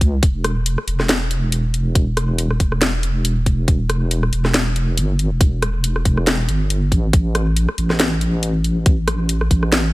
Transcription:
0.01 0.21 C#2 medium
0.01 kick medium
0.01 closed hi-hat medium
0.23 0.76 E1 loud
0.23 kick loud
0.23 closed hi-hat medium
0.44 cross-stick medium
0.44 closed hi-hat medium
0.66 closed hi-hat medium
0.78 cross-stick medium
0.87 2.59 E1 medium
0.87 closed hi-hat medium
1.00 cross-stick medium
1.00 snare soft
1.09 snare loud
1.09 closed hi-hat medium
1.31 closed hi-hat medium
1.52 closed hi-hat medium
1.74 closed hi-hat medium
1.95 kick loud
1.95 closed hi-hat medium
2.17 cross-stick medium
2.17 closed hi-hat medium
2.38 closed hi-hat medium
2.51 cross-stick soft
2.60 4.31 E1 medium
2.60 kick medium
2.60 closed hi-hat medium
2.72 cross-stick medium
2.82 snare loud
2.82 closed hi-hat medium
3.03 closed hi-hat medium
3.25 closed hi-hat medium
3.46 kick medium
3.46 closed hi-hat medium
3.68 kick loud
3.68 closed hi-hat medium
3.90 cross-stick medium
3.90 closed hi-hat medium
4.11 closed hi-hat medium
4.23 cross-stick medium
4.33 4.99 E1 medium
4.33 closed hi-hat medium
4.45 cross-stick soft
4.45 snare soft
4.54 snare loud
4.54 closed hi-hat medium
4.76 closed hi-hat medium
4.97 5.30 G1 medium
4.97 closed hi-hat medium
5.19 closed hi-hat medium
5.31 6.04 E1 medium
5.41 kick loud
5.41 closed hi-hat medium
5.62 cross-stick medium
5.62 closed hi-hat medium
5.84 closed hi-hat medium
5.96 cross-stick medium
6.05 6.48 E1 medium
6.05 kick medium
6.05 closed hi-hat medium
6.17 cross-stick soft
6.27 snare loud
6.27 closed hi-hat medium
6.49 6.93 G1 medium
6.49 closed hi-hat soft
6.70 closed hi-hat medium
6.92 7.12 A1 loud
6.92 kick medium
6.92 closed hi-hat soft
7.13 7.67 A1 loud
7.13 kick loud
7.13 closed hi-hat medium
7.35 cross-stick medium
7.35 closed hi-hat medium
7.57 closed hi-hat medium
7.69 cross-stick medium
7.78 9.49 A1 medium
7.78 closed hi-hat soft
7.90 cross-stick medium
7.90 snare soft
8.00 snare loud
8.00 closed hi-hat medium
8.21 closed hi-hat soft
8.43 closed hi-hat medium
8.64 closed hi-hat soft
8.86 kick loud
8.86 closed hi-hat medium
9.08 cross-stick medium
9.08 closed hi-hat soft
9.29 closed hi-hat medium
9.41 cross-stick medium
9.51 9.93 A1 medium
9.51 kick medium
9.51 closed hi-hat medium
9.63 cross-stick medium
9.72 snare loud
9.72 closed hi-hat medium

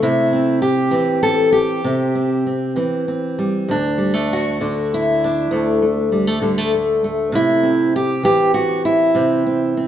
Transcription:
0.00 0.93 C3 medium
0.00 0.65 A3 soft
0.00 0.61 E4 medium
0.33 0.91 C4 soft
0.62 1.22 G4 medium
0.91 1.80 E3 medium
0.91 1.80 C4 soft
1.23 1.52 A4 loud
1.52 3.69 G4 medium
1.84 2.77 C3 medium
1.84 2.14 C4 soft
2.15 2.45 C4 soft
2.47 2.75 C4 soft
2.76 3.65 E3 medium
2.76 3.07 C4 soft
3.08 3.66 C4 soft
3.39 3.70 G3 soft
3.68 5.50 D2 medium
3.68 4.60 D4 medium
3.98 4.14 G3 soft
4.14 5.51 A3 soft
4.33 4.93 F#4 loud
4.61 6.41 D3 medium
4.61 5.22 D4 soft
4.94 5.84 E4 medium
5.24 7.35 D4 medium
5.51 7.33 D2 medium
5.51 5.82 A3 soft
5.82 6.12 A3 soft
6.12 6.27 G3 soft
6.27 6.42 A3 soft
6.42 7.33 D3 medium
6.42 6.58 G3 soft
6.58 6.73 A3 soft
6.74 7.04 A3 soft
7.04 7.99 A3 soft
7.32 8.24 C3 medium
7.32 7.95 E4 loud
7.63 9.12 C4 soft
7.96 8.24 G4 medium
8.23 9.88 E3 medium
8.23 8.54 G4 loud
8.54 8.85 F#4 medium
8.85 9.88 E4 medium
9.15 9.88 C3 medium
9.15 9.45 C4 soft
9.47 9.76 C4 soft
9.77 9.88 C4 soft

